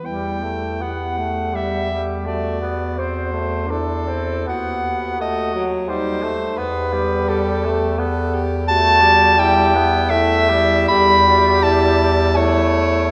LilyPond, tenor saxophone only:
\new Staff \with { instrumentName = "Tenor saxophone" } { \time 3/4 \key e \minor \tempo 4 = 83 g8 a8 b8 a8 g8 g8 | a8 b8 c'8 a8 d'8 c'8 | b4 a8 fis8 g8 a8 | b8 g8 g8 a8 b8 r8 |
\key a \dorian a8 g8 g8 b8 a8 g8 | g2 a4 | }